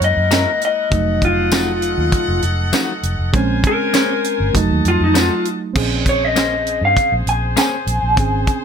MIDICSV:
0, 0, Header, 1, 7, 480
1, 0, Start_track
1, 0, Tempo, 604230
1, 732, Time_signature, 4, 2, 24, 8
1, 6868, End_track
2, 0, Start_track
2, 0, Title_t, "Clean electric guitar"
2, 0, Program_c, 0, 27
2, 33, Note_on_c, 0, 75, 96
2, 489, Note_off_c, 0, 75, 0
2, 516, Note_on_c, 0, 75, 92
2, 971, Note_off_c, 0, 75, 0
2, 991, Note_on_c, 0, 65, 96
2, 1913, Note_off_c, 0, 65, 0
2, 2915, Note_on_c, 0, 70, 100
2, 3603, Note_off_c, 0, 70, 0
2, 3877, Note_on_c, 0, 65, 100
2, 3986, Note_off_c, 0, 65, 0
2, 4002, Note_on_c, 0, 63, 95
2, 4102, Note_off_c, 0, 63, 0
2, 4122, Note_on_c, 0, 65, 108
2, 4340, Note_off_c, 0, 65, 0
2, 4839, Note_on_c, 0, 73, 95
2, 4961, Note_off_c, 0, 73, 0
2, 4961, Note_on_c, 0, 75, 88
2, 5415, Note_off_c, 0, 75, 0
2, 5442, Note_on_c, 0, 77, 83
2, 5662, Note_off_c, 0, 77, 0
2, 5790, Note_on_c, 0, 80, 82
2, 6014, Note_off_c, 0, 80, 0
2, 6032, Note_on_c, 0, 80, 104
2, 6868, Note_off_c, 0, 80, 0
2, 6868, End_track
3, 0, Start_track
3, 0, Title_t, "Horn section"
3, 0, Program_c, 1, 61
3, 0, Note_on_c, 1, 64, 72
3, 0, Note_on_c, 1, 70, 81
3, 0, Note_on_c, 1, 78, 91
3, 697, Note_off_c, 1, 64, 0
3, 697, Note_off_c, 1, 70, 0
3, 697, Note_off_c, 1, 78, 0
3, 730, Note_on_c, 1, 75, 80
3, 731, Note_on_c, 1, 69, 86
3, 734, Note_on_c, 1, 78, 93
3, 2632, Note_off_c, 1, 75, 0
3, 2633, Note_off_c, 1, 69, 0
3, 2634, Note_off_c, 1, 78, 0
3, 2649, Note_on_c, 1, 72, 82
3, 2651, Note_on_c, 1, 70, 73
3, 2653, Note_on_c, 1, 80, 87
3, 3601, Note_off_c, 1, 72, 0
3, 3602, Note_off_c, 1, 70, 0
3, 3603, Note_off_c, 1, 80, 0
3, 3617, Note_on_c, 1, 81, 84
3, 3618, Note_on_c, 1, 78, 71
3, 3620, Note_on_c, 1, 75, 75
3, 4435, Note_off_c, 1, 75, 0
3, 4435, Note_off_c, 1, 78, 0
3, 4435, Note_off_c, 1, 81, 0
3, 4570, Note_on_c, 1, 72, 81
3, 4573, Note_on_c, 1, 68, 69
3, 6868, Note_off_c, 1, 68, 0
3, 6868, Note_off_c, 1, 72, 0
3, 6868, End_track
4, 0, Start_track
4, 0, Title_t, "Clean electric guitar"
4, 0, Program_c, 2, 27
4, 245, Note_on_c, 2, 54, 84
4, 251, Note_on_c, 2, 61, 78
4, 258, Note_on_c, 2, 64, 80
4, 263, Note_on_c, 2, 70, 89
4, 396, Note_off_c, 2, 54, 0
4, 399, Note_off_c, 2, 61, 0
4, 403, Note_off_c, 2, 64, 0
4, 405, Note_off_c, 2, 70, 0
4, 1208, Note_on_c, 2, 53, 72
4, 1216, Note_on_c, 2, 57, 81
4, 1219, Note_on_c, 2, 63, 74
4, 1227, Note_on_c, 2, 66, 89
4, 1358, Note_off_c, 2, 53, 0
4, 1362, Note_off_c, 2, 57, 0
4, 1364, Note_off_c, 2, 63, 0
4, 1367, Note_off_c, 2, 66, 0
4, 2168, Note_on_c, 2, 53, 86
4, 2174, Note_on_c, 2, 57, 90
4, 2179, Note_on_c, 2, 63, 87
4, 2185, Note_on_c, 2, 66, 94
4, 2318, Note_off_c, 2, 53, 0
4, 2321, Note_off_c, 2, 57, 0
4, 2323, Note_off_c, 2, 63, 0
4, 2326, Note_off_c, 2, 66, 0
4, 3127, Note_on_c, 2, 58, 76
4, 3135, Note_on_c, 2, 61, 81
4, 3141, Note_on_c, 2, 68, 80
4, 3145, Note_on_c, 2, 72, 81
4, 3277, Note_off_c, 2, 58, 0
4, 3281, Note_off_c, 2, 61, 0
4, 3284, Note_off_c, 2, 68, 0
4, 3286, Note_off_c, 2, 72, 0
4, 4086, Note_on_c, 2, 53, 78
4, 4092, Note_on_c, 2, 57, 91
4, 4099, Note_on_c, 2, 63, 86
4, 4104, Note_on_c, 2, 66, 82
4, 4236, Note_off_c, 2, 53, 0
4, 4239, Note_off_c, 2, 57, 0
4, 4243, Note_off_c, 2, 63, 0
4, 4246, Note_off_c, 2, 66, 0
4, 5051, Note_on_c, 2, 58, 74
4, 5059, Note_on_c, 2, 61, 81
4, 5063, Note_on_c, 2, 68, 83
4, 5068, Note_on_c, 2, 72, 84
4, 5199, Note_off_c, 2, 58, 0
4, 5203, Note_off_c, 2, 61, 0
4, 5205, Note_off_c, 2, 68, 0
4, 5207, Note_off_c, 2, 72, 0
4, 6010, Note_on_c, 2, 58, 75
4, 6017, Note_on_c, 2, 61, 85
4, 6021, Note_on_c, 2, 68, 82
4, 6025, Note_on_c, 2, 72, 82
4, 6158, Note_off_c, 2, 58, 0
4, 6162, Note_off_c, 2, 61, 0
4, 6164, Note_off_c, 2, 68, 0
4, 6166, Note_off_c, 2, 72, 0
4, 6868, End_track
5, 0, Start_track
5, 0, Title_t, "Reed electric piano"
5, 0, Program_c, 3, 4
5, 0, Note_on_c, 3, 56, 68
5, 0, Note_on_c, 3, 58, 65
5, 0, Note_on_c, 3, 64, 77
5, 695, Note_off_c, 3, 56, 0
5, 701, Note_off_c, 3, 58, 0
5, 709, Note_off_c, 3, 64, 0
5, 717, Note_on_c, 3, 54, 59
5, 730, Note_on_c, 3, 57, 60
5, 743, Note_on_c, 3, 63, 71
5, 2613, Note_off_c, 3, 54, 0
5, 2619, Note_off_c, 3, 57, 0
5, 2626, Note_off_c, 3, 63, 0
5, 2643, Note_on_c, 3, 56, 78
5, 2655, Note_on_c, 3, 60, 69
5, 2669, Note_on_c, 3, 61, 87
5, 3588, Note_off_c, 3, 56, 0
5, 3594, Note_off_c, 3, 60, 0
5, 3600, Note_on_c, 3, 54, 76
5, 3602, Note_off_c, 3, 61, 0
5, 3614, Note_on_c, 3, 57, 67
5, 3626, Note_on_c, 3, 63, 85
5, 4547, Note_off_c, 3, 54, 0
5, 4554, Note_off_c, 3, 57, 0
5, 4556, Note_on_c, 3, 60, 71
5, 4560, Note_off_c, 3, 63, 0
5, 4568, Note_on_c, 3, 61, 63
5, 4584, Note_on_c, 3, 68, 75
5, 6452, Note_off_c, 3, 60, 0
5, 6458, Note_off_c, 3, 61, 0
5, 6465, Note_off_c, 3, 68, 0
5, 6482, Note_on_c, 3, 60, 64
5, 6497, Note_on_c, 3, 61, 55
5, 6511, Note_on_c, 3, 68, 68
5, 6868, Note_off_c, 3, 60, 0
5, 6868, Note_off_c, 3, 61, 0
5, 6868, Note_off_c, 3, 68, 0
5, 6868, End_track
6, 0, Start_track
6, 0, Title_t, "Fingered electric bass"
6, 0, Program_c, 4, 33
6, 4, Note_on_c, 4, 42, 92
6, 122, Note_off_c, 4, 42, 0
6, 132, Note_on_c, 4, 42, 83
6, 355, Note_off_c, 4, 42, 0
6, 728, Note_on_c, 4, 29, 102
6, 1543, Note_off_c, 4, 29, 0
6, 1569, Note_on_c, 4, 39, 88
6, 1679, Note_off_c, 4, 39, 0
6, 1813, Note_on_c, 4, 29, 101
6, 1921, Note_off_c, 4, 29, 0
6, 1930, Note_on_c, 4, 29, 93
6, 2152, Note_off_c, 4, 29, 0
6, 2410, Note_on_c, 4, 29, 98
6, 2525, Note_off_c, 4, 29, 0
6, 2535, Note_on_c, 4, 29, 89
6, 2642, Note_off_c, 4, 29, 0
6, 2650, Note_on_c, 4, 34, 106
6, 2872, Note_off_c, 4, 34, 0
6, 3496, Note_on_c, 4, 31, 92
6, 3603, Note_off_c, 4, 31, 0
6, 3609, Note_on_c, 4, 29, 109
6, 3725, Note_off_c, 4, 29, 0
6, 3739, Note_on_c, 4, 39, 102
6, 3844, Note_off_c, 4, 39, 0
6, 3852, Note_on_c, 4, 41, 93
6, 3967, Note_off_c, 4, 41, 0
6, 3976, Note_on_c, 4, 41, 88
6, 4197, Note_off_c, 4, 41, 0
6, 4569, Note_on_c, 4, 34, 89
6, 5383, Note_off_c, 4, 34, 0
6, 5413, Note_on_c, 4, 43, 87
6, 5521, Note_off_c, 4, 43, 0
6, 5658, Note_on_c, 4, 34, 97
6, 5763, Note_off_c, 4, 34, 0
6, 5771, Note_on_c, 4, 34, 89
6, 5992, Note_off_c, 4, 34, 0
6, 6250, Note_on_c, 4, 34, 94
6, 6365, Note_off_c, 4, 34, 0
6, 6377, Note_on_c, 4, 34, 86
6, 6483, Note_off_c, 4, 34, 0
6, 6491, Note_on_c, 4, 32, 97
6, 6712, Note_off_c, 4, 32, 0
6, 6868, End_track
7, 0, Start_track
7, 0, Title_t, "Drums"
7, 12, Note_on_c, 9, 42, 63
7, 92, Note_off_c, 9, 42, 0
7, 249, Note_on_c, 9, 42, 84
7, 249, Note_on_c, 9, 54, 109
7, 259, Note_on_c, 9, 38, 110
7, 329, Note_off_c, 9, 42, 0
7, 329, Note_off_c, 9, 54, 0
7, 338, Note_off_c, 9, 38, 0
7, 488, Note_on_c, 9, 42, 67
7, 567, Note_off_c, 9, 42, 0
7, 726, Note_on_c, 9, 42, 78
7, 728, Note_on_c, 9, 36, 104
7, 806, Note_off_c, 9, 42, 0
7, 808, Note_off_c, 9, 36, 0
7, 967, Note_on_c, 9, 42, 67
7, 968, Note_on_c, 9, 36, 89
7, 1046, Note_off_c, 9, 42, 0
7, 1048, Note_off_c, 9, 36, 0
7, 1204, Note_on_c, 9, 42, 92
7, 1204, Note_on_c, 9, 54, 112
7, 1214, Note_on_c, 9, 38, 112
7, 1284, Note_off_c, 9, 42, 0
7, 1284, Note_off_c, 9, 54, 0
7, 1293, Note_off_c, 9, 38, 0
7, 1446, Note_on_c, 9, 42, 60
7, 1525, Note_off_c, 9, 42, 0
7, 1685, Note_on_c, 9, 42, 83
7, 1687, Note_on_c, 9, 36, 93
7, 1764, Note_off_c, 9, 42, 0
7, 1766, Note_off_c, 9, 36, 0
7, 1925, Note_on_c, 9, 42, 57
7, 2005, Note_off_c, 9, 42, 0
7, 2167, Note_on_c, 9, 42, 86
7, 2167, Note_on_c, 9, 54, 111
7, 2177, Note_on_c, 9, 38, 114
7, 2247, Note_off_c, 9, 42, 0
7, 2247, Note_off_c, 9, 54, 0
7, 2256, Note_off_c, 9, 38, 0
7, 2409, Note_on_c, 9, 42, 64
7, 2489, Note_off_c, 9, 42, 0
7, 2649, Note_on_c, 9, 42, 77
7, 2650, Note_on_c, 9, 36, 108
7, 2728, Note_off_c, 9, 42, 0
7, 2729, Note_off_c, 9, 36, 0
7, 2887, Note_on_c, 9, 42, 64
7, 2890, Note_on_c, 9, 36, 86
7, 2967, Note_off_c, 9, 42, 0
7, 2969, Note_off_c, 9, 36, 0
7, 3128, Note_on_c, 9, 42, 90
7, 3128, Note_on_c, 9, 54, 112
7, 3137, Note_on_c, 9, 38, 121
7, 3207, Note_off_c, 9, 42, 0
7, 3207, Note_off_c, 9, 54, 0
7, 3217, Note_off_c, 9, 38, 0
7, 3371, Note_on_c, 9, 42, 63
7, 3450, Note_off_c, 9, 42, 0
7, 3612, Note_on_c, 9, 36, 94
7, 3613, Note_on_c, 9, 42, 96
7, 3691, Note_off_c, 9, 36, 0
7, 3692, Note_off_c, 9, 42, 0
7, 3852, Note_on_c, 9, 42, 61
7, 3932, Note_off_c, 9, 42, 0
7, 4093, Note_on_c, 9, 42, 91
7, 4093, Note_on_c, 9, 54, 115
7, 4102, Note_on_c, 9, 38, 116
7, 4172, Note_off_c, 9, 42, 0
7, 4172, Note_off_c, 9, 54, 0
7, 4182, Note_off_c, 9, 38, 0
7, 4332, Note_on_c, 9, 42, 69
7, 4411, Note_off_c, 9, 42, 0
7, 4573, Note_on_c, 9, 36, 100
7, 4573, Note_on_c, 9, 49, 98
7, 4652, Note_off_c, 9, 36, 0
7, 4652, Note_off_c, 9, 49, 0
7, 4813, Note_on_c, 9, 36, 83
7, 4815, Note_on_c, 9, 42, 62
7, 4893, Note_off_c, 9, 36, 0
7, 4894, Note_off_c, 9, 42, 0
7, 5055, Note_on_c, 9, 42, 88
7, 5055, Note_on_c, 9, 54, 112
7, 5064, Note_on_c, 9, 38, 112
7, 5134, Note_off_c, 9, 42, 0
7, 5134, Note_off_c, 9, 54, 0
7, 5144, Note_off_c, 9, 38, 0
7, 5295, Note_on_c, 9, 42, 61
7, 5374, Note_off_c, 9, 42, 0
7, 5534, Note_on_c, 9, 36, 88
7, 5536, Note_on_c, 9, 42, 78
7, 5613, Note_off_c, 9, 36, 0
7, 5615, Note_off_c, 9, 42, 0
7, 5775, Note_on_c, 9, 42, 54
7, 5854, Note_off_c, 9, 42, 0
7, 6013, Note_on_c, 9, 42, 81
7, 6013, Note_on_c, 9, 54, 114
7, 6022, Note_on_c, 9, 38, 112
7, 6092, Note_off_c, 9, 42, 0
7, 6092, Note_off_c, 9, 54, 0
7, 6102, Note_off_c, 9, 38, 0
7, 6254, Note_on_c, 9, 42, 60
7, 6333, Note_off_c, 9, 42, 0
7, 6490, Note_on_c, 9, 42, 77
7, 6492, Note_on_c, 9, 36, 108
7, 6569, Note_off_c, 9, 42, 0
7, 6572, Note_off_c, 9, 36, 0
7, 6729, Note_on_c, 9, 42, 63
7, 6732, Note_on_c, 9, 36, 80
7, 6809, Note_off_c, 9, 42, 0
7, 6811, Note_off_c, 9, 36, 0
7, 6868, End_track
0, 0, End_of_file